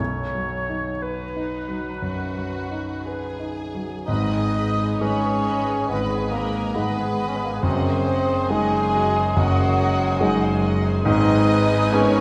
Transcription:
0.00 B1 B2 C#5
0.35 F#3
0.70 D#4
1.02 D#4 B4
1.36 D#4
1.69 F#3
2.02 F#2 F#4
2.36 F#3
2.71 D#4
3.04 G#4 B4
3.40 D#4
3.75 F#3
4.06 G#1 G#2 D#4 G#4 B4 D#5 B5 D#6
4.31 G#4 B4 G#5
4.55 B4 D#5 B5
4.79 G#4 B4 G#5
5.00 G#1 G#2 G#3 C#4 D#4 B4 C#5 D#5 B5 C#6
5.23 G#4 B4 G#5
5.46 B4 D#5 B5
5.68 G#4 B4 G#5
5.88 G#1 G#2 B3 B4 D#5 B5
6.10 G#4 B4 G#5
6.31 A#3 A#4 B4 D#5 A#5 B5
6.53 G#4 B4 G#5
6.75 G#1 G#2 G#3 B3 D#4 B4 D#5 B5
6.97 G#4 B4 G#5
7.18 B4 D#5 B5
7.29 C#4
7.37 B3 G#4 B4
7.43 A#3 G#5
7.54 B3
7.63 F#1 F#2 C4 F#4 G#4 C5 D#5 F#5 C6
7.85 G#4 C5 G#5
8.07 F#4 D#5 F#5
8.28 G#4 C5
8.33 G#5
8.50 F#1 F#2 G#3 D#4 F#4 G#4 D#5 F#5 G#5
8.72 G#4 C5 G#5
8.93 F#4 D#5
8.97 F#5
9.15 G#4 C5 G#5
9.36 F#1 F#2 F#3 F#4 D#5 F#5
9.59 G#4 C5 G#5
9.78 F#4 D#5 F#5
9.99 G#4 C5
10.03 G#5
10.20 F#1 F#2 G#3 D#4 F#4 G#4 D#5
10.24 F#5
10.42 G#4 C5 G#5
10.64 F#4 D#5 F#5
10.84 G#4 C5 G#5
11.05 G#1 G#2 D#4 G#4 B4 D#5 G#5 D#6
11.92 B3 C#4 D#4 G#4 A#4 C#5 C#6

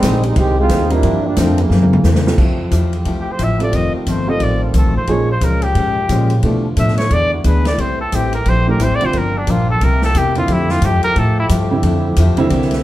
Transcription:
Already playing: D#3 G3 G#3 C4
0.02 A#1 G#2 G3 C4 D#4, kick, snare, hi-hat pedal, ride
0.23 G3 G#3 C4 D#4, ride
0.36 C2 G#2 D#3 G3 G#3 C4 D#4 G4, kick, ride
0.59 G#3 C4 D#4 F4
0.69 D#2 G#2 G3 C4 D#4, kick, snare, hi-hat pedal, ride
0.90 G3 A#3 C4 D4 E4 F4 A#4, ride
1.03 G2 F3 A#3 D4, kick, ride
1.25 F3 G3 A#3 D4
1.36 F2 G2 D3 F3 A3 A#3 C4 D4, kick, snare, hi-hat pedal, ride
1.58 C#3 E3 F#3 A#3, ride
1.70 F#2 E3 A#3 C4, snare
1.82 mid tom
1.93 mid tom
2.04 E2 F#2 E3 A#3 C4, snare, hi-hat pedal
2.16 snare
2.26 G3 C4 F4 A4, snare
2.38 F2 F3 A3 C4 E4 F4 G4, kick, crash
2.71 E2 F3 A3 E4 G4, kick, hi-hat pedal, ride
2.93 ride
3.05 C2 F3 A3 E4 G4, kick, ride
3.21 G4
3.26 muted upright bass stroke
3.32 C5
3.39 A1 F3 A3 E4 G4, kick, hi-hat pedal, ride
3.43 E5
3.59 G3 C4 F4 A4, ride
3.63 D5
3.73 F1 F2 D#3 A3 C4 F4 D#5, kick, ride
3.94 G4, muted upright bass stroke
4.06 G1 F2 D#3 A3 C4 C5, kick, hi-hat pedal, ride
4.27 G3 C4 F4 A4 D#5
4.40 A1 F2 D#3 A3 C4 D5, kick, ride
4.64 F4
4.73 C2 F2 D#3 A3 C4, kick, hi-hat pedal, ride
4.78 A4
4.85 A1
4.96 F1 C5
5.07 A#1 A#2 C#3 F3 G#3 A#3 D#4 G#4, kick, ride
5.11 C#4 C#5
5.32 C5
5.41 C#2 A#2 F3 G#3 C#4 A#4, kick, hi-hat pedal, ride
5.62 G4, ride
5.75 G#2 A#2 F3 G#3 C#4, kick, ride
6.09 A#2 F3 G#3 C#4, kick, hi-hat pedal, ride
6.30 ride
6.42 B2 D3 E3 F3 A3 B3 D4 G4, kick, ride
6.46 D4
6.76 A2 B2 F3 A3 D4 E5, kick, hi-hat pedal, ride
6.88 snare
6.97 C#5, snare, ride
7.10 E2 E3 G#3 B3 D4 E4 G#4 D5, kick, ride
7.34 F#4
7.44 D2 E3 B3 D4 G#4 B4, kick, hi-hat pedal, ride
7.65 D5, snare, ride
7.77 C2 A2 E3 G3 A3 C4 E4 G4 C5, kick, ride
8.01 A4
8.12 A1 A2 G3 C4 E4 G4, kick, hi-hat pedal, ride
8.33 A#4, ride
8.45 A#1 A2 G3 C4 E4 C5, kick, ride
8.67 E3 A3 D4 G4 A#4
8.79 A1 A2 G3 C4 E4, kick, hi-hat pedal, ride
8.83 C5
8.91 G1
8.95 D5
9.01 E1 D3 G3 C4 F4, ride
9.05 C5
9.13 G1 G2 F3 A#3 D4, kick, ride
9.18 A#4
9.38 D4
9.47 A#1 G2 F3 A#3 D4 F4, kick, hi-hat pedal, ride
9.71 A4
9.81 C2 C3 E3 A#3 C4 E4 G4 A#4, kick, ride
10.02 A4, snare
10.14 E2 C3 A#3 E4 G4, kick, hi-hat pedal, ride
10.35 D3 G3 C4 E4 F4, ride
10.48 F2 F3 A3 E4 G4, kick, ride
10.52 E4
10.69 F4, snare
10.82 G2 F3 A3 E4 G4, kick, hi-hat pedal, ride
10.94 F2
11.03 E2 A#4, ride
11.15 A2 F3 A3 E4 G4 A4, kick, ride
11.40 E4
11.49 G2 F3 A3 E4 G4, kick, hi-hat pedal, ride
11.71 D3 G3 C4 E4
11.83 F2 F3 A3 E4 G4, kick, ride
12.16 E2 F3 A3 E4 G4, kick, hi-hat pedal, ride
12.37 D3 G3 C4 E4, muted upright bass stroke, ride
12.50 C2 C3 E3 A#3 C4 E4 G4, kick, ride
12.62 snare
12.71 snare, ride

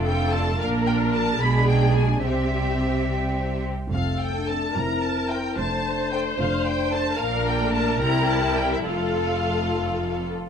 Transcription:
Already playing: F1 F2 A3 D4 A4
0.06 F4 A4 G5
0.32 D4 F4 A5
0.60 A#1 A#2 A#3 D4 A#4 F5
0.86 G5
1.13 A5
1.41 B1 B2 G#3 D4 G#4 B5
1.68 G5
1.96 G#5
2.23 C2 C3 G3 C4 G4 E5
3.92 F1 F2 A3 C4 A4 F5
4.20 G5
4.35 D4
4.48 C4 A4 A5
4.75 F1 F2 C4 E4 A#4 A#5
5.02 A5
5.29 E4 C5 G5
5.57 F1 F2 A3 D4 C5 A5
6.12 D4 A4 G5
6.37 F1 F2 A3 D4 F5
6.65 G5
6.92 D4 A4 A5
7.18 A#1 A#2 A#3 D4 A#4 F5
7.47 G5
7.58 A3
7.73 A5
7.99 C2 C3 G3 E4 G4 A#5
8.29 A5
8.57 G5
8.72 E5
8.85 F1 F2 A3 F4 A4 F5

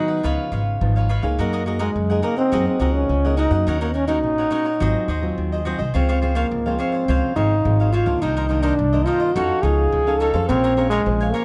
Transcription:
Already playing: D#3 F#3 B3 D#4
0.08 G#4 B4 F#5
0.23 C#2 C#3 F3 B3 D#4 F4 B4 C#5 F5
0.52 G#1 F4 B4 C#5 F5
0.81 G#1 G#2 F3 B3 D#4
0.96 B4 C#5 F5
1.09 F4 B4 C#5 F5
1.23 C#2 A#3 D#4 G#4 B4 C#5 F5
1.39 F#2 F#3 A#3 F#4 A#4 D#5 F#5
1.53 F#4 A#4 D#5 F#5
1.66 A#3 D#4 F#4 G#4 A#4 D#5 F#5
1.79 G#3 F#4 A#4 D#5 F#5
1.96 F#2 C#3
2.10 A#3 D#4 G#4 A#4 D#5 F#5
2.22 A#3 F#4 A#4 D#5 F#5
2.37 C4 A#4 D#5 F#5
2.52 F#2 F#3 A#3 D#4 F#4 G#4 A#4 D#5 F#5
2.68 C4
2.79 C#2 A#3 D#4 F#4 G#4 A#4 D#5 F#5
2.94 C#4
3.09 C#2 C#3
3.24 A#3 D#4 G#4 A#4 D#5 F#5
3.37 D#4 F#4 A#4 D#5 F#5
3.51 F#2 A#3 C#4 F#4 A#4 D#5 F#5
3.67 D#2 D#3 D#4 A#4 C#5 F#5
3.81 A#3 D#4 A#4 C#5 F#5
3.94 C#4 D#4 A#4 C#5 F#5
4.07 A#3 C#4 D#4 F#4 A#4 C#5 F#5
4.23 A1 A#2
4.38 A#4 C#5 F#5
4.51 A#3 C#4 D#4 F#4 A#4 C#5 F#5
4.65 A#4 C#5 F#5
4.80 G#1 G#2 F#3 C4 F4 F#4 G#4 C5 D#5
5.08 D#2 F#4 G#4 C5 D#5
5.22 F#3 C4 F4
5.38 D#2 D#3
5.52 G#4 C5 D#5
5.65 F#3 C4 F4 F#4 G#4 C5 D#5
5.79 C2 G#4 C5 D#5
5.94 C#2 C#3 F3 G#3 C4 F4 C5 C#5 F5
6.09 F4 C5 C#5 F5
6.22 F3 G#3 C4 F4 C5 C#5 F5
6.35 A#3 F4 C5 C#5 F5
6.51 C#2 G#2
6.66 F3 G#3 C4 C5 C#5 F5
6.79 C4 F4 C5 C#5 F5
6.92 C5 C#5 F5
7.08 C#2 C#3 F3 G#3 C4 F4 C5 C#5 F5
7.36 G#1 F3 G#3 C4 D#4 F4 C5 C#5 F5
7.65 G#1 G#2 F3 G#3 C4
7.80 C5 C#5 F5
7.92 F4 C5 C#5 F5
8.06 C#2 D#3 A#3 D4 C5 C#5 F5
8.22 C2 C3 D#4 A#4 C5 D#5
8.37 D#4 A#4 C5 D#5
8.49 D#3 A#3 D4 D#4 A#4 C5 D#5
8.63 D4 D#4 A#4 C5 D#5
8.79 C2 G2
8.93 D#3 A#3 D4 A#4 C5 D#5
9.06 D#4 F4 A#4 C5 D#5
9.20 A#4 C5 D#5
9.35 F2 F3 C#4 D#4 F#4 A4 C#5 F5
9.63 C#2 C#4 D#4 G#4 C#5 F5
9.92 C#2 F3
10.07 C#4 D#4 A4 C#5 F5
10.19 D#4 A4 C#5 F5
10.34 F2 C#4 G#4 A4 C5 C#5 F5
10.48 A#1 A#3 C4 A#4 C#5 F5 G#5
10.64 A#4 C#5 F5 G#5
10.77 C#4 G#4 A#4 C5 C#5 F5 G#5
10.90 G#3 A#4 C#5 F5 G#5
11.06 A#1 F3 C#4 G#4 C5
11.20 C#5 F5 G#5
11.33 A#3 A#4 C#5 F5 G#5

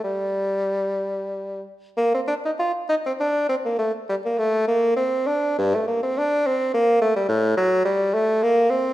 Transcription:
0.04 G3
1.97 A#3
2.15 C4
2.28 D4
2.45 D#4
2.59 F4
2.89 D#4
3.06 C4
3.20 D4
3.49 C4
3.65 A#3
3.79 A3
4.09 G3
4.25 A#3
4.39 A3
4.68 A#3
4.96 C4
5.27 D4
5.58 G2
5.75 A3
5.88 A#3
6.03 C4
6.18 D4
6.46 C4
6.74 A#3
7.02 A3
7.16 G3
7.29 A2
7.57 F#3
7.85 G3
8.14 A3
8.43 A#3
8.70 C4

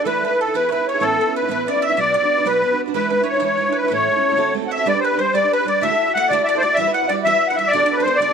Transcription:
0.01 D4 A4
0.05 E3 A3 E4 A4 B4
0.23 A3 E4 A4 B4
0.31 E4 A4 B4
0.39 A4
0.46 E4 A4 B4
0.54 E3 B3 E4 G#4 B4
0.69 B3 E4 G#4 B4 C#5
0.78 E4 G#4 B4
0.85 C#5
0.92 E4 G#4 B4
1.00 A2 E3 B3 C#4 E4 A4 B4
1.05 A4
1.16 B3 C#4 B4
1.21 A4
1.25 B3 C#4 E4 B4
1.35 B4
1.41 B3 C#4 E4 B4
1.48 A2 E3 B3 C#4 E4 B4
1.66 B3 C#4 E4 B4 D5
1.73 B3 C#4 E4 B4
1.82 E5
1.89 B3 C#4 E4 B4
1.96 B2 F#3 B3 D4 F#4 B4 D5
2.12 B3 F#4 D5
2.17 B4 D5
2.22 B3 D4 F#4 B4
2.37 B3 D4 F#4 B4
2.43 B2 F#3 B3 D4 F#4 B4 C#5
2.48 B4
2.62 B3 D4 F#4 B4
2.70 B3 D4 F#4 B4
2.86 B3 D4 F#4 B4
2.94 E3 G#3 D4 E4 B4
3.10 G#3 D4 E4 B4
3.19 D4 E4 B4
3.24 C#5
3.28 C#5
3.34 D4 E4 B4
3.40 E3 G#3 D4 E4 C#5
3.44 B4 C#5
3.57 G#3 D4 E4 B4
3.66 D4 E4 B4
3.72 B4
3.77 B4
3.83 D4 E4 B4
3.88 A2 E3 A3 C#4 E4 A4 C#5
3.94 C#5
4.08 A3 C#4 E4 A4
4.15 A3 C#4 E4 A4
4.29 A3 C#4 E4 A4
4.36 D3 A3 C4 F#4 A4
4.54 A3 C4 F#4 A4
4.62 C4 F#4 A4
4.67 E5 F#5
4.73 E5
4.78 C4 F#4 A4
4.86 G3 D4 G4 B4 D5
4.94 D4 G4 B4
5.00 B4 C5
5.05 B4
5.12 D4 G4 B4
5.18 G3 D4 G4 B4 C5
5.33 G3 D4 G4 B4 D5
5.41 D4 G4 B4
5.53 B4
5.59 D4 G4 B4
5.65 G3 D4 G4 B4 D5
5.81 D3 A3 E4 F#4 A4 E5
5.91 E4 F#4 A4
6.08 E4 F#4 A4
6.14 A3 E4 F#4 F#5
6.19 A4
6.29 D3 A3 E4 F#4 A4 D5
6.33 D5
6.38 E4 F#4 A4
6.43 D5 E5
6.47 D5
6.55 E4 F#4 A4 C5
6.59 A3 D5
6.64 F#4 A4
6.74 E3 E5
6.78 G3 E4 F#4 B4
6.87 E4 F#4 B4
6.93 F#5
7.03 E4 F#4 B4
7.08 G3 E4 D5
7.12 F#4 B4
7.22 E3 G3 E5
7.26 E4 F#4 B4 E5
7.34 E4 F#4 B4
7.47 F#5
7.52 E4 F#4 B4 E5
7.57 G3 E4 F#4 E5
7.61 B4
7.68 D5
7.72 D3 B3 D4 F#4 A4 D5
7.79 F#4 A4 D5
7.84 D4 D5
7.92 B4
7.97 D4 F#4 A4 B4
8.02 B3 D4 F#4 C5
8.07 A4 C5
8.16 D3 D5
8.20 B3 D4 F#4 A4 D5
8.28 F#4 A4

